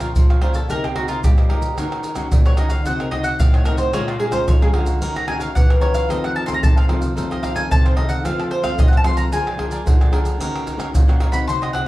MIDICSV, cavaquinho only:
0, 0, Header, 1, 2, 480
1, 0, Start_track
1, 0, Key_signature, -5, "minor"
1, 0, Tempo, 539084
1, 1584, Time_signature, 4, 2, 24, 8
1, 10574, End_track
2, 0, Start_track
2, 0, Title_t, "Cavaquinho"
2, 0, Program_c, 0, 24
2, 2, Note_on_c, 0, 65, 67
2, 5, Note_on_c, 0, 70, 72
2, 8, Note_on_c, 0, 73, 78
2, 11, Note_on_c, 0, 77, 74
2, 93, Note_off_c, 0, 65, 0
2, 94, Note_off_c, 0, 70, 0
2, 96, Note_off_c, 0, 73, 0
2, 97, Note_off_c, 0, 77, 0
2, 267, Note_on_c, 0, 77, 53
2, 276, Note_on_c, 0, 73, 48
2, 287, Note_on_c, 0, 70, 43
2, 366, Note_off_c, 0, 70, 0
2, 371, Note_on_c, 0, 65, 61
2, 372, Note_off_c, 0, 73, 0
2, 376, Note_off_c, 0, 77, 0
2, 377, Note_on_c, 0, 70, 70
2, 383, Note_on_c, 0, 73, 72
2, 389, Note_on_c, 0, 77, 75
2, 469, Note_off_c, 0, 77, 0
2, 477, Note_off_c, 0, 73, 0
2, 479, Note_on_c, 0, 77, 42
2, 485, Note_off_c, 0, 70, 0
2, 488, Note_off_c, 0, 65, 0
2, 488, Note_on_c, 0, 73, 44
2, 496, Note_on_c, 0, 70, 41
2, 602, Note_off_c, 0, 77, 0
2, 606, Note_off_c, 0, 73, 0
2, 610, Note_off_c, 0, 70, 0
2, 618, Note_on_c, 0, 63, 70
2, 626, Note_on_c, 0, 70, 70
2, 631, Note_on_c, 0, 72, 78
2, 637, Note_on_c, 0, 75, 77
2, 731, Note_off_c, 0, 63, 0
2, 735, Note_off_c, 0, 70, 0
2, 737, Note_off_c, 0, 75, 0
2, 738, Note_off_c, 0, 72, 0
2, 747, Note_on_c, 0, 75, 51
2, 759, Note_on_c, 0, 72, 43
2, 766, Note_on_c, 0, 70, 38
2, 845, Note_off_c, 0, 70, 0
2, 849, Note_on_c, 0, 63, 48
2, 851, Note_off_c, 0, 72, 0
2, 856, Note_off_c, 0, 75, 0
2, 856, Note_on_c, 0, 70, 55
2, 861, Note_on_c, 0, 72, 52
2, 868, Note_on_c, 0, 75, 55
2, 948, Note_off_c, 0, 63, 0
2, 952, Note_off_c, 0, 70, 0
2, 955, Note_off_c, 0, 72, 0
2, 958, Note_off_c, 0, 75, 0
2, 959, Note_on_c, 0, 63, 75
2, 963, Note_on_c, 0, 70, 80
2, 966, Note_on_c, 0, 72, 82
2, 969, Note_on_c, 0, 75, 75
2, 1051, Note_off_c, 0, 63, 0
2, 1053, Note_off_c, 0, 70, 0
2, 1055, Note_off_c, 0, 72, 0
2, 1056, Note_off_c, 0, 75, 0
2, 1221, Note_on_c, 0, 75, 49
2, 1234, Note_on_c, 0, 72, 41
2, 1241, Note_on_c, 0, 70, 38
2, 1324, Note_off_c, 0, 70, 0
2, 1325, Note_on_c, 0, 63, 72
2, 1329, Note_off_c, 0, 72, 0
2, 1333, Note_off_c, 0, 75, 0
2, 1335, Note_on_c, 0, 70, 72
2, 1340, Note_on_c, 0, 72, 71
2, 1344, Note_on_c, 0, 75, 83
2, 1565, Note_off_c, 0, 63, 0
2, 1570, Note_off_c, 0, 70, 0
2, 1572, Note_off_c, 0, 72, 0
2, 1574, Note_off_c, 0, 75, 0
2, 1579, Note_on_c, 0, 63, 68
2, 1589, Note_on_c, 0, 70, 72
2, 1595, Note_on_c, 0, 73, 78
2, 1600, Note_on_c, 0, 78, 68
2, 1801, Note_off_c, 0, 63, 0
2, 1810, Note_off_c, 0, 70, 0
2, 1812, Note_on_c, 0, 63, 53
2, 1814, Note_off_c, 0, 73, 0
2, 1819, Note_off_c, 0, 78, 0
2, 1820, Note_on_c, 0, 70, 53
2, 1824, Note_on_c, 0, 73, 54
2, 1830, Note_on_c, 0, 78, 61
2, 1912, Note_off_c, 0, 63, 0
2, 1918, Note_off_c, 0, 70, 0
2, 1921, Note_off_c, 0, 73, 0
2, 1923, Note_on_c, 0, 63, 70
2, 1926, Note_off_c, 0, 78, 0
2, 1929, Note_on_c, 0, 70, 68
2, 1932, Note_on_c, 0, 73, 76
2, 1937, Note_on_c, 0, 78, 77
2, 2014, Note_off_c, 0, 63, 0
2, 2016, Note_off_c, 0, 70, 0
2, 2018, Note_off_c, 0, 73, 0
2, 2020, Note_off_c, 0, 78, 0
2, 2185, Note_on_c, 0, 78, 51
2, 2193, Note_on_c, 0, 73, 49
2, 2202, Note_on_c, 0, 70, 45
2, 2282, Note_off_c, 0, 70, 0
2, 2285, Note_on_c, 0, 63, 70
2, 2286, Note_off_c, 0, 73, 0
2, 2291, Note_off_c, 0, 78, 0
2, 2293, Note_on_c, 0, 70, 73
2, 2297, Note_on_c, 0, 73, 68
2, 2302, Note_on_c, 0, 78, 79
2, 2381, Note_off_c, 0, 78, 0
2, 2392, Note_on_c, 0, 78, 47
2, 2393, Note_off_c, 0, 73, 0
2, 2401, Note_off_c, 0, 70, 0
2, 2404, Note_on_c, 0, 73, 42
2, 2405, Note_off_c, 0, 63, 0
2, 2412, Note_on_c, 0, 70, 40
2, 2518, Note_off_c, 0, 78, 0
2, 2524, Note_off_c, 0, 73, 0
2, 2528, Note_off_c, 0, 70, 0
2, 2537, Note_on_c, 0, 66, 74
2, 2542, Note_on_c, 0, 72, 78
2, 2549, Note_on_c, 0, 75, 83
2, 2555, Note_on_c, 0, 78, 82
2, 2650, Note_off_c, 0, 78, 0
2, 2651, Note_off_c, 0, 66, 0
2, 2654, Note_off_c, 0, 72, 0
2, 2657, Note_off_c, 0, 75, 0
2, 2660, Note_on_c, 0, 78, 50
2, 2673, Note_on_c, 0, 75, 52
2, 2682, Note_on_c, 0, 72, 38
2, 2763, Note_off_c, 0, 72, 0
2, 2768, Note_on_c, 0, 66, 47
2, 2769, Note_off_c, 0, 75, 0
2, 2773, Note_off_c, 0, 78, 0
2, 2774, Note_on_c, 0, 72, 50
2, 2780, Note_on_c, 0, 75, 54
2, 2785, Note_on_c, 0, 78, 56
2, 2864, Note_off_c, 0, 66, 0
2, 2870, Note_off_c, 0, 72, 0
2, 2873, Note_off_c, 0, 75, 0
2, 2875, Note_on_c, 0, 66, 70
2, 2876, Note_off_c, 0, 78, 0
2, 2880, Note_on_c, 0, 72, 76
2, 2883, Note_on_c, 0, 75, 85
2, 2886, Note_on_c, 0, 78, 79
2, 2969, Note_off_c, 0, 66, 0
2, 2972, Note_off_c, 0, 72, 0
2, 2974, Note_off_c, 0, 75, 0
2, 2975, Note_off_c, 0, 78, 0
2, 3139, Note_on_c, 0, 78, 51
2, 3153, Note_on_c, 0, 75, 41
2, 3160, Note_on_c, 0, 72, 42
2, 3240, Note_off_c, 0, 72, 0
2, 3241, Note_on_c, 0, 66, 73
2, 3244, Note_off_c, 0, 75, 0
2, 3250, Note_off_c, 0, 78, 0
2, 3250, Note_on_c, 0, 72, 69
2, 3255, Note_on_c, 0, 75, 72
2, 3261, Note_on_c, 0, 78, 83
2, 3483, Note_off_c, 0, 66, 0
2, 3488, Note_off_c, 0, 72, 0
2, 3490, Note_off_c, 0, 75, 0
2, 3493, Note_off_c, 0, 78, 0
2, 3497, Note_on_c, 0, 68, 67
2, 3504, Note_on_c, 0, 73, 80
2, 3510, Note_on_c, 0, 77, 76
2, 3514, Note_on_c, 0, 82, 77
2, 3717, Note_off_c, 0, 68, 0
2, 3726, Note_off_c, 0, 73, 0
2, 3728, Note_on_c, 0, 68, 48
2, 3732, Note_off_c, 0, 77, 0
2, 3736, Note_on_c, 0, 73, 51
2, 3737, Note_off_c, 0, 82, 0
2, 3743, Note_on_c, 0, 77, 59
2, 3747, Note_on_c, 0, 82, 56
2, 3829, Note_off_c, 0, 68, 0
2, 3831, Note_off_c, 0, 73, 0
2, 3836, Note_off_c, 0, 77, 0
2, 3839, Note_on_c, 0, 68, 70
2, 3840, Note_off_c, 0, 82, 0
2, 3842, Note_on_c, 0, 73, 70
2, 3846, Note_on_c, 0, 77, 81
2, 3850, Note_on_c, 0, 82, 73
2, 3932, Note_off_c, 0, 68, 0
2, 3933, Note_off_c, 0, 73, 0
2, 3935, Note_off_c, 0, 77, 0
2, 3937, Note_off_c, 0, 82, 0
2, 4101, Note_on_c, 0, 82, 49
2, 4113, Note_on_c, 0, 77, 45
2, 4123, Note_on_c, 0, 73, 46
2, 4203, Note_off_c, 0, 73, 0
2, 4208, Note_on_c, 0, 68, 66
2, 4211, Note_off_c, 0, 77, 0
2, 4213, Note_off_c, 0, 82, 0
2, 4214, Note_on_c, 0, 73, 66
2, 4222, Note_on_c, 0, 77, 65
2, 4227, Note_on_c, 0, 82, 79
2, 4314, Note_off_c, 0, 82, 0
2, 4324, Note_off_c, 0, 77, 0
2, 4325, Note_on_c, 0, 82, 47
2, 4327, Note_off_c, 0, 68, 0
2, 4329, Note_off_c, 0, 73, 0
2, 4334, Note_on_c, 0, 77, 46
2, 4342, Note_on_c, 0, 73, 39
2, 4445, Note_off_c, 0, 82, 0
2, 4450, Note_off_c, 0, 77, 0
2, 4454, Note_off_c, 0, 73, 0
2, 4459, Note_on_c, 0, 63, 69
2, 4466, Note_on_c, 0, 70, 82
2, 4471, Note_on_c, 0, 73, 78
2, 4478, Note_on_c, 0, 78, 82
2, 4572, Note_off_c, 0, 63, 0
2, 4576, Note_off_c, 0, 70, 0
2, 4577, Note_off_c, 0, 78, 0
2, 4578, Note_off_c, 0, 73, 0
2, 4588, Note_on_c, 0, 78, 49
2, 4599, Note_on_c, 0, 73, 45
2, 4607, Note_on_c, 0, 70, 40
2, 4684, Note_off_c, 0, 70, 0
2, 4689, Note_on_c, 0, 63, 48
2, 4693, Note_off_c, 0, 73, 0
2, 4695, Note_on_c, 0, 70, 55
2, 4697, Note_off_c, 0, 78, 0
2, 4704, Note_on_c, 0, 73, 50
2, 4708, Note_on_c, 0, 78, 52
2, 4786, Note_off_c, 0, 63, 0
2, 4790, Note_off_c, 0, 70, 0
2, 4793, Note_off_c, 0, 73, 0
2, 4796, Note_on_c, 0, 63, 71
2, 4797, Note_off_c, 0, 78, 0
2, 4801, Note_on_c, 0, 70, 77
2, 4803, Note_on_c, 0, 73, 87
2, 4808, Note_on_c, 0, 78, 86
2, 4891, Note_off_c, 0, 63, 0
2, 4893, Note_off_c, 0, 70, 0
2, 4894, Note_off_c, 0, 73, 0
2, 4896, Note_off_c, 0, 78, 0
2, 5062, Note_on_c, 0, 78, 51
2, 5072, Note_on_c, 0, 73, 46
2, 5081, Note_on_c, 0, 70, 40
2, 5162, Note_off_c, 0, 70, 0
2, 5165, Note_on_c, 0, 63, 75
2, 5167, Note_off_c, 0, 73, 0
2, 5171, Note_off_c, 0, 78, 0
2, 5172, Note_on_c, 0, 70, 78
2, 5177, Note_on_c, 0, 73, 73
2, 5182, Note_on_c, 0, 78, 78
2, 5403, Note_off_c, 0, 63, 0
2, 5409, Note_off_c, 0, 70, 0
2, 5412, Note_off_c, 0, 73, 0
2, 5413, Note_on_c, 0, 63, 67
2, 5414, Note_off_c, 0, 78, 0
2, 5421, Note_on_c, 0, 69, 67
2, 5428, Note_on_c, 0, 72, 78
2, 5434, Note_on_c, 0, 77, 77
2, 5635, Note_off_c, 0, 63, 0
2, 5642, Note_off_c, 0, 69, 0
2, 5646, Note_on_c, 0, 63, 49
2, 5650, Note_off_c, 0, 72, 0
2, 5653, Note_on_c, 0, 69, 51
2, 5654, Note_off_c, 0, 77, 0
2, 5661, Note_on_c, 0, 72, 51
2, 5664, Note_on_c, 0, 77, 51
2, 5748, Note_off_c, 0, 63, 0
2, 5751, Note_off_c, 0, 69, 0
2, 5755, Note_off_c, 0, 72, 0
2, 5758, Note_on_c, 0, 63, 71
2, 5759, Note_off_c, 0, 77, 0
2, 5762, Note_on_c, 0, 69, 73
2, 5766, Note_on_c, 0, 72, 70
2, 5769, Note_on_c, 0, 77, 76
2, 5852, Note_off_c, 0, 63, 0
2, 5853, Note_off_c, 0, 69, 0
2, 5855, Note_off_c, 0, 72, 0
2, 5857, Note_off_c, 0, 77, 0
2, 6021, Note_on_c, 0, 77, 54
2, 6031, Note_on_c, 0, 72, 51
2, 6038, Note_on_c, 0, 69, 44
2, 6123, Note_off_c, 0, 69, 0
2, 6126, Note_on_c, 0, 63, 69
2, 6129, Note_off_c, 0, 72, 0
2, 6133, Note_off_c, 0, 77, 0
2, 6134, Note_on_c, 0, 69, 70
2, 6139, Note_on_c, 0, 72, 67
2, 6144, Note_on_c, 0, 77, 80
2, 6227, Note_off_c, 0, 77, 0
2, 6236, Note_off_c, 0, 72, 0
2, 6237, Note_on_c, 0, 77, 47
2, 6245, Note_off_c, 0, 69, 0
2, 6246, Note_off_c, 0, 63, 0
2, 6247, Note_on_c, 0, 72, 43
2, 6256, Note_on_c, 0, 69, 43
2, 6362, Note_off_c, 0, 77, 0
2, 6366, Note_off_c, 0, 72, 0
2, 6371, Note_off_c, 0, 69, 0
2, 6371, Note_on_c, 0, 63, 74
2, 6381, Note_on_c, 0, 69, 76
2, 6384, Note_on_c, 0, 72, 81
2, 6389, Note_on_c, 0, 77, 86
2, 6488, Note_off_c, 0, 77, 0
2, 6489, Note_off_c, 0, 63, 0
2, 6493, Note_off_c, 0, 69, 0
2, 6495, Note_off_c, 0, 72, 0
2, 6498, Note_on_c, 0, 77, 48
2, 6508, Note_on_c, 0, 72, 48
2, 6517, Note_on_c, 0, 69, 44
2, 6597, Note_off_c, 0, 69, 0
2, 6600, Note_on_c, 0, 63, 52
2, 6603, Note_off_c, 0, 72, 0
2, 6608, Note_on_c, 0, 69, 50
2, 6609, Note_off_c, 0, 77, 0
2, 6614, Note_on_c, 0, 72, 53
2, 6620, Note_on_c, 0, 77, 52
2, 6709, Note_off_c, 0, 63, 0
2, 6711, Note_off_c, 0, 69, 0
2, 6715, Note_off_c, 0, 72, 0
2, 6718, Note_off_c, 0, 77, 0
2, 6719, Note_on_c, 0, 63, 79
2, 6722, Note_on_c, 0, 69, 82
2, 6726, Note_on_c, 0, 72, 74
2, 6729, Note_on_c, 0, 77, 85
2, 6812, Note_off_c, 0, 63, 0
2, 6814, Note_off_c, 0, 69, 0
2, 6816, Note_off_c, 0, 72, 0
2, 6817, Note_off_c, 0, 77, 0
2, 6981, Note_on_c, 0, 77, 44
2, 6991, Note_on_c, 0, 72, 40
2, 7000, Note_on_c, 0, 69, 41
2, 7080, Note_off_c, 0, 69, 0
2, 7083, Note_on_c, 0, 63, 73
2, 7086, Note_off_c, 0, 72, 0
2, 7090, Note_off_c, 0, 77, 0
2, 7091, Note_on_c, 0, 69, 67
2, 7097, Note_on_c, 0, 72, 77
2, 7101, Note_on_c, 0, 77, 74
2, 7325, Note_off_c, 0, 63, 0
2, 7329, Note_off_c, 0, 69, 0
2, 7332, Note_off_c, 0, 72, 0
2, 7334, Note_off_c, 0, 77, 0
2, 7334, Note_on_c, 0, 65, 68
2, 7342, Note_on_c, 0, 69, 64
2, 7348, Note_on_c, 0, 72, 74
2, 7352, Note_on_c, 0, 77, 79
2, 7555, Note_off_c, 0, 65, 0
2, 7563, Note_off_c, 0, 69, 0
2, 7566, Note_on_c, 0, 65, 51
2, 7568, Note_off_c, 0, 72, 0
2, 7573, Note_on_c, 0, 69, 56
2, 7575, Note_off_c, 0, 77, 0
2, 7579, Note_on_c, 0, 72, 59
2, 7586, Note_on_c, 0, 77, 62
2, 7670, Note_off_c, 0, 65, 0
2, 7674, Note_off_c, 0, 69, 0
2, 7676, Note_off_c, 0, 72, 0
2, 7681, Note_off_c, 0, 77, 0
2, 7681, Note_on_c, 0, 65, 77
2, 7685, Note_on_c, 0, 69, 73
2, 7687, Note_on_c, 0, 72, 80
2, 7691, Note_on_c, 0, 77, 77
2, 7773, Note_off_c, 0, 65, 0
2, 7775, Note_off_c, 0, 69, 0
2, 7776, Note_off_c, 0, 72, 0
2, 7779, Note_off_c, 0, 77, 0
2, 7949, Note_on_c, 0, 77, 54
2, 7958, Note_on_c, 0, 72, 48
2, 7966, Note_on_c, 0, 69, 44
2, 8045, Note_off_c, 0, 69, 0
2, 8051, Note_on_c, 0, 65, 69
2, 8053, Note_off_c, 0, 72, 0
2, 8056, Note_on_c, 0, 69, 70
2, 8058, Note_off_c, 0, 77, 0
2, 8063, Note_on_c, 0, 72, 76
2, 8070, Note_on_c, 0, 77, 69
2, 8148, Note_off_c, 0, 77, 0
2, 8156, Note_off_c, 0, 72, 0
2, 8158, Note_on_c, 0, 77, 46
2, 8164, Note_off_c, 0, 69, 0
2, 8167, Note_on_c, 0, 72, 41
2, 8169, Note_off_c, 0, 65, 0
2, 8175, Note_on_c, 0, 69, 41
2, 8283, Note_off_c, 0, 77, 0
2, 8287, Note_off_c, 0, 72, 0
2, 8291, Note_off_c, 0, 69, 0
2, 8300, Note_on_c, 0, 62, 70
2, 8309, Note_on_c, 0, 70, 79
2, 8313, Note_on_c, 0, 74, 79
2, 8321, Note_on_c, 0, 80, 77
2, 8413, Note_off_c, 0, 62, 0
2, 8416, Note_off_c, 0, 80, 0
2, 8418, Note_off_c, 0, 70, 0
2, 8420, Note_off_c, 0, 74, 0
2, 8426, Note_on_c, 0, 80, 53
2, 8438, Note_on_c, 0, 74, 52
2, 8444, Note_on_c, 0, 70, 38
2, 8523, Note_off_c, 0, 70, 0
2, 8527, Note_on_c, 0, 62, 49
2, 8530, Note_off_c, 0, 74, 0
2, 8534, Note_off_c, 0, 80, 0
2, 8534, Note_on_c, 0, 70, 50
2, 8541, Note_on_c, 0, 74, 59
2, 8545, Note_on_c, 0, 80, 57
2, 8636, Note_off_c, 0, 62, 0
2, 8640, Note_off_c, 0, 70, 0
2, 8644, Note_off_c, 0, 74, 0
2, 8647, Note_on_c, 0, 62, 80
2, 8648, Note_off_c, 0, 80, 0
2, 8651, Note_on_c, 0, 70, 74
2, 8655, Note_on_c, 0, 74, 83
2, 8659, Note_on_c, 0, 80, 79
2, 8737, Note_off_c, 0, 62, 0
2, 8739, Note_off_c, 0, 70, 0
2, 8741, Note_off_c, 0, 74, 0
2, 8742, Note_off_c, 0, 80, 0
2, 8909, Note_on_c, 0, 80, 46
2, 8916, Note_on_c, 0, 74, 47
2, 8925, Note_on_c, 0, 70, 38
2, 9004, Note_off_c, 0, 70, 0
2, 9008, Note_off_c, 0, 74, 0
2, 9008, Note_on_c, 0, 62, 69
2, 9014, Note_off_c, 0, 80, 0
2, 9015, Note_on_c, 0, 70, 73
2, 9019, Note_on_c, 0, 74, 71
2, 9025, Note_on_c, 0, 80, 79
2, 9248, Note_off_c, 0, 62, 0
2, 9251, Note_off_c, 0, 70, 0
2, 9253, Note_off_c, 0, 74, 0
2, 9256, Note_off_c, 0, 80, 0
2, 9260, Note_on_c, 0, 63, 67
2, 9270, Note_on_c, 0, 70, 73
2, 9273, Note_on_c, 0, 73, 74
2, 9279, Note_on_c, 0, 78, 83
2, 9479, Note_off_c, 0, 63, 0
2, 9486, Note_off_c, 0, 70, 0
2, 9489, Note_on_c, 0, 63, 53
2, 9491, Note_off_c, 0, 73, 0
2, 9497, Note_off_c, 0, 78, 0
2, 9497, Note_on_c, 0, 70, 51
2, 9502, Note_on_c, 0, 73, 55
2, 9507, Note_on_c, 0, 78, 59
2, 9595, Note_off_c, 0, 63, 0
2, 9598, Note_off_c, 0, 70, 0
2, 9602, Note_off_c, 0, 73, 0
2, 9605, Note_off_c, 0, 78, 0
2, 9605, Note_on_c, 0, 63, 74
2, 9608, Note_on_c, 0, 70, 73
2, 9612, Note_on_c, 0, 73, 76
2, 9616, Note_on_c, 0, 78, 80
2, 9696, Note_off_c, 0, 63, 0
2, 9698, Note_off_c, 0, 70, 0
2, 9700, Note_off_c, 0, 73, 0
2, 9701, Note_off_c, 0, 78, 0
2, 9867, Note_on_c, 0, 78, 54
2, 9877, Note_on_c, 0, 73, 55
2, 9885, Note_on_c, 0, 70, 45
2, 9967, Note_off_c, 0, 70, 0
2, 9971, Note_on_c, 0, 63, 72
2, 9972, Note_off_c, 0, 73, 0
2, 9978, Note_off_c, 0, 78, 0
2, 9978, Note_on_c, 0, 70, 77
2, 9983, Note_on_c, 0, 73, 75
2, 9988, Note_on_c, 0, 78, 72
2, 10072, Note_off_c, 0, 78, 0
2, 10083, Note_on_c, 0, 78, 55
2, 10084, Note_off_c, 0, 73, 0
2, 10090, Note_off_c, 0, 63, 0
2, 10093, Note_off_c, 0, 70, 0
2, 10094, Note_on_c, 0, 73, 46
2, 10103, Note_on_c, 0, 70, 40
2, 10206, Note_off_c, 0, 78, 0
2, 10211, Note_off_c, 0, 73, 0
2, 10215, Note_off_c, 0, 70, 0
2, 10227, Note_on_c, 0, 66, 70
2, 10235, Note_on_c, 0, 72, 85
2, 10241, Note_on_c, 0, 75, 81
2, 10246, Note_on_c, 0, 78, 87
2, 10338, Note_off_c, 0, 66, 0
2, 10342, Note_off_c, 0, 72, 0
2, 10345, Note_off_c, 0, 75, 0
2, 10345, Note_off_c, 0, 78, 0
2, 10355, Note_on_c, 0, 78, 56
2, 10366, Note_on_c, 0, 75, 44
2, 10371, Note_on_c, 0, 72, 44
2, 10447, Note_off_c, 0, 72, 0
2, 10452, Note_on_c, 0, 66, 55
2, 10454, Note_off_c, 0, 75, 0
2, 10458, Note_on_c, 0, 72, 50
2, 10462, Note_off_c, 0, 78, 0
2, 10465, Note_on_c, 0, 75, 55
2, 10471, Note_on_c, 0, 78, 58
2, 10555, Note_off_c, 0, 66, 0
2, 10558, Note_off_c, 0, 72, 0
2, 10563, Note_off_c, 0, 75, 0
2, 10565, Note_off_c, 0, 78, 0
2, 10574, End_track
0, 0, End_of_file